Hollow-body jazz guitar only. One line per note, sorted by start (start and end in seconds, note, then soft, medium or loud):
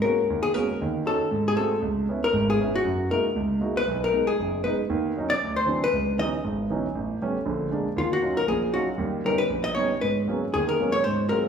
0.02 0.40 A#4 medium
0.43 0.54 G#4 medium
0.54 0.79 A#4 medium
1.07 1.44 A4 medium
1.48 1.56 G#4 medium
1.57 1.80 A4 medium
2.24 2.47 A#4 medium
2.50 2.72 G#4 medium
2.75 3.08 F#4 medium
3.11 3.25 A#4 medium
3.77 4.00 B4 medium
4.04 4.26 A#4 medium
4.27 4.60 G#4 medium
4.64 4.78 B4 medium
5.30 5.53 D5 loud
5.56 5.79 C5 medium
5.84 6.16 B4 medium
6.19 6.28 D#5 medium
7.98 8.12 F4 medium
8.13 8.36 F#4 medium
8.37 8.47 A#4 medium
8.48 8.71 G#4 medium
8.74 8.88 F#4 medium
9.26 9.38 A#4 medium
9.38 9.62 B4 medium
9.64 9.74 D#5 medium
9.75 9.99 C#5 medium
10.01 10.16 B4 medium
10.54 10.68 G#4 medium
10.69 10.92 A#4 medium
10.92 11.03 C#5 medium
11.04 11.27 C5 medium
11.29 11.38 A#4 medium